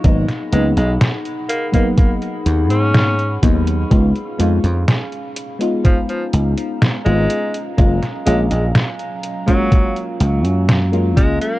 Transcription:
Already playing: D#4
0.04 G#1 F#3 A#3 B3 D#4 G#4 F#5 B5, kick, closed hi-hat
0.28 snare, closed hi-hat
0.52 C#2 F#3 G#3 A#3 B3 D#4, closed hi-hat
0.77 B1 G#3, closed hi-hat
1.01 snare, closed hi-hat
1.25 closed hi-hat
1.49 A#3, closed hi-hat
1.72 F#3 A#3 B3 D#4, kick, closed hi-hat
1.98 A#3, kick, closed hi-hat
2.22 closed hi-hat
2.46 D#2, closed hi-hat
2.70 G#2 C#4, closed hi-hat
2.94 snare, closed hi-hat
3.19 closed hi-hat
3.42 D#2 F#3 A#3 B3 D#4, kick, closed hi-hat
3.67 closed hi-hat
3.90 C#2 G#3 B3 C#4 D#4 F4 F5, kick, closed hi-hat
4.16 closed hi-hat
4.38 F2 G#3 B3 D#4 F4, closed hi-hat
4.64 F2, closed hi-hat
4.88 snare, closed hi-hat
5.12 closed hi-hat
5.36 closed hi-hat
5.59 G#3 B3 D#4 F4, closed hi-hat
5.85 F3 A#5, kick, closed hi-hat
6.09 F3, closed hi-hat
6.33 C#2, closed hi-hat
6.57 closed hi-hat
6.82 snare, closed hi-hat
7.05 G#1 G#3 B3 D#4 F4, closed hi-hat
7.30 closed hi-hat
7.54 closed hi-hat
7.77 F#1 F#3 G#3 A#3 C#4 F4, kick, closed hi-hat
8.03 snare, closed hi-hat
8.26 A#1 G#3 A#3 C#4 F4, closed hi-hat
8.51 A#1 G#3, closed hi-hat
8.75 snare, closed hi-hat
8.99 closed hi-hat
9.23 closed hi-hat
9.46 F#3 G#3 A#3 C#4 F4, kick, closed hi-hat
9.72 kick, closed hi-hat
9.96 closed hi-hat
10.20 C#2, closed hi-hat
10.45 F#2, closed hi-hat
10.69 snare, closed hi-hat
10.92 G#3 A#3 C#4 F4, closed hi-hat
11.17 C#2 G#3, kick, closed hi-hat
11.41 A#3, closed hi-hat

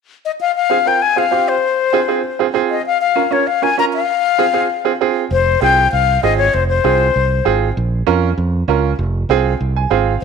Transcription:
0.25 D#5
0.41 F5
0.56 F5
0.70 C4 F4 G#4
0.86 C4 F4 A#4 G5
1.02 G#5
1.16 C4 F4 G#4 F5
1.31 C4 F4 G4
1.48 C5
1.93 C4 F4 G#4
2.08 C4 F4 G#4
2.39 C4 F4 G#4
2.54 C4 F4 G#4
2.70 D#5
2.86 F5
3.01 F5
3.16 C#4 F4 A#4
3.31 C#4 F4 A#4 C#5
3.47 F5
3.62 C#4 F4 A#4 G#5
3.78 C#4 F4 A#4 A#5
3.94 F5
4.38 C4 F4 G#4
4.53 C4 F4 G#4
4.85 C4 F4 G#4
5.01 C4 F4 G#4
5.31 F1 C5
5.61 C2 C4 F4 G#4 G5
5.92 C2 F5
6.23 G#1 C4 F4 G#4 D#5
6.38 C#5
6.54 F1 C5
6.68 C5
6.84 C2 C4 F4 G#4
7.16 C2
7.45 G#1 C4 F4 G#4
7.77 A#1
8.07 F2 C#4 F4 A#4
8.38 F2
8.68 C#2 C#4 F4 A#4
8.99 F1
9.29 C2 C4 F4 G#4
9.61 C2
9.76 G#5
9.91 G#1 C4 F4 G#4 F5

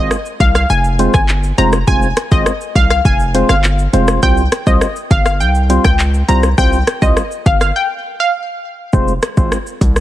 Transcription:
Already playing: G#3 C4 F4 C5
0.11 cross-stick, shaker
0.26 shaker
0.40 C2 F5, kick, closed hi-hat, shaker
0.55 F5, cross-stick, shaker
0.70 F1 G#5, shaker
0.84 shaker
0.99 G#3 C4 F4 C5, closed hi-hat, shaker
1.14 G1 G#5, kick, cross-stick, shaker
1.29 clap, shaker
1.44 shaker
1.58 F1 G#3 C4 F4 C5 A#5, closed hi-hat, shaker
1.73 cross-stick, shaker
1.87 F1 G#3 C4 F4 C5 G#5, kick, shaker
2.02 shaker
2.17 cross-stick, closed hi-hat, shaker
2.31 G#1 G#3 C4 F4 C5 D#5, kick, shaker
2.46 cross-stick, shaker
2.61 shaker
2.75 C2 F5, kick, closed hi-hat, shaker
2.90 F5, cross-stick, shaker
3.05 F1 G#5, kick, shaker
3.20 shaker
3.34 G#3 C4 F4 C5, closed hi-hat, shaker
3.49 G1 F5, cross-stick, shaker
3.64 clap, shaker
3.79 shaker
3.93 F1 G#3 C4 F4 C5, closed hi-hat, shaker
4.08 cross-stick, shaker
4.22 C2 G3 C4 F4 C5 G5, kick, shaker
4.37 shaker
4.52 cross-stick, closed hi-hat, shaker
4.67 C2 G3 C4 F4 C5 D#5, kick, shaker
4.81 cross-stick, shaker
4.96 shaker
5.11 G1 F5, kick, closed hi-hat, shaker
5.26 F5, cross-stick, shaker
5.40 C2 G5, shaker
5.55 shaker
5.69 G3 C4 F4 C5, closed hi-hat, shaker
5.84 C#2 G5, kick, cross-stick, shaker
5.99 clap, shaker
6.14 shaker
6.28 C2 G3 C4 F4 C5 A#5, closed hi-hat, shaker
6.43 cross-stick, shaker
6.58 C2 G3 C4 F4 C5 G5, kick, shaker
6.73 shaker
6.87 cross-stick, closed hi-hat, shaker
7.02 C2 G3 C4 F4 C5 D#5, kick, shaker
7.17 cross-stick, shaker
7.31 shaker
7.46 G1 F5, kick, closed hi-hat, shaker
7.61 F5, cross-stick, shaker
7.76 G5
8.20 F5
8.93 F1 G#3 C4 F4 C5, kick, shaker
9.08 shaker
9.23 cross-stick, closed hi-hat, shaker
9.37 G#1 G#3 C4 F4 C5, kick, shaker
9.52 cross-stick, shaker
9.67 shaker
9.81 C2, kick, closed hi-hat, shaker
9.96 cross-stick, shaker

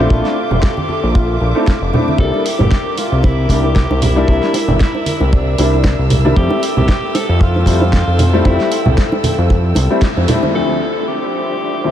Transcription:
Already playing: F4 A4 E5 C6 D6
0.10 A#1 A3 C4 D4 E4, kick
0.25 snare
0.51 F1, low conga
0.61 G4, kick, snare
0.77 high conga
0.89 high conga
1.03 A#1
1.14 F4, kick
1.41 A#1
1.55 A3 C4 D4 E4
1.67 kick, snare
1.82 F1
1.93 A3 C4 D4 E4, low conga
2.08 high conga
2.18 C2 G3 A#3 D4 E4 A4 A#4, kick
2.34 high bongo
2.46 G4, open hi-hat
2.59 G1, high bongo, low conga
2.71 kick, snare
2.98 F4, open hi-hat, high bongo
3.12 C2
3.23 E4, kick, high bongo
3.49 C2 G3 A#3 D4 E4 G4, kick, open hi-hat
3.64 high bongo
3.76 kick, snare
3.90 C2, high bongo
4.02 E4, open hi-hat, low conga
4.16 G3 A#3 D4 E4
4.28 C2 G3 A#3 D4 E4 E6, kick, high bongo
4.43 snare
4.54 open hi-hat, high bongo
4.68 G1, low conga
4.80 E4, kick, snare
4.95 high bongo
5.06 open hi-hat, high conga
5.20 C2, high bongo
5.32 D4, kick
5.58 C2 G3 A#3 D4 E4, open hi-hat, high bongo
5.84 kick, snare, high bongo
5.99 C2
6.10 open hi-hat, low conga
6.25 G3 A#3 D4 E4, high bongo, high conga
6.36 F2 G3 A3 C4 E4 G4 A4 G5, kick
6.50 high bongo
6.63 open hi-hat
6.77 C2 G4, low conga
6.88 kick, snare, high bongo
7.15 A4, open hi-hat, high bongo
7.29 F2
7.40 F4, kick
7.56 high bongo
7.66 F2 G3 A3 C4 E4, kick, open hi-hat
7.82 high bongo
7.93 kick, snare
8.07 F2
8.18 open hi-hat, high bongo, low conga
8.33 G3 A3 C4 E4
8.44 F2 G3 A3 C4 E4, kick, high bongo
8.60 snare
8.72 open hi-hat
8.86 C2, high bongo, low conga
8.98 kick, snare
9.12 high bongo
9.23 open hi-hat, high conga, low conga
9.38 F2
9.50 kick, high bongo
9.75 C2, open hi-hat, high bongo
9.90 G3 A3 C4 E4
10.02 kick, snare
10.17 F2, high bongo
10.28 G3 A3 C4 E4, open hi-hat, low conga
10.43 high bongo, high conga
10.54 D2 F3 A3 C4 D4 E4 A4 C5 E5
11.08 G4
11.84 D2 F3 A3 C4 E4

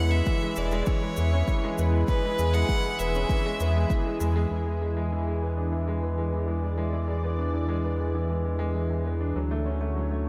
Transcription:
Already playing: E2 E3 G#3 B3 C#4 E4 F#5
0.11 G#3 E5
0.26 E3 B4, kick, shaker
0.31 G#4
0.42 G#3
0.56 E1 G#3 D5, shaker
0.71 G#3, shaker
0.86 E3 C#5, kick, shaker
1.03 G#3
1.17 E2 B3, shaker
1.34 C#4
1.48 E3, kick, shaker
1.64 G#3
1.78 E2 B3, shaker
1.94 G#3
2.08 E3 B4, kick, shaker
2.24 G#3
2.39 E2 G#3, shaker
2.53 G#3 F#5, shaker
2.69 E3, kick, shaker
2.85 G#3
2.99 E1 B3 E5, shaker
3.15 C#4, shaker
3.30 E3, kick, shaker
3.46 G#3
3.60 E2 B3, shaker
3.76 G#3
3.90 E3, kick, shaker
4.06 G#3
4.20 E2 G#3, shaker
4.36 G#3
4.51 E2 E3
4.67 G#3
4.81 G#3
4.97 G#3
5.12 E3
5.27 G#3
5.42 B3
5.57 D4
5.72 E3
5.88 G#3
6.03 B3
6.14 D5
6.18 G#3
6.33 E3
6.48 G#3
6.63 G#3
6.78 G#3
6.93 E3
7.08 G#3
7.23 B3
7.39 D4
7.54 E3
7.69 G#3
7.84 B3
8.00 G#3
8.15 E3
8.30 G#3
8.45 G#3
8.59 G#3
8.75 E3
8.90 G#3
9.06 B3
9.21 D4
9.36 D2 D3 F#3
9.51 A3
9.63 C#4 F#4
9.78 A3 C#5
9.96 F#3
10.11 A3

